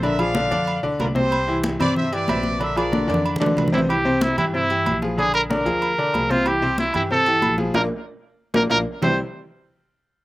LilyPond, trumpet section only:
\new Staff \with { instrumentName = "Trumpet section" } { \time 4/4 \key c \major \tempo 4 = 187 <bes' e''>8 <d'' f''>2 r8 <f' bes'>8 <g' c''>8~ | <g' c''>4 r8 <b' d''>8 <c'' e''>8 <b' d''>4. | <bes' e''>8 <bes' d''>2 r4. | r1 |
r1 | r1 | r1 | r1 | }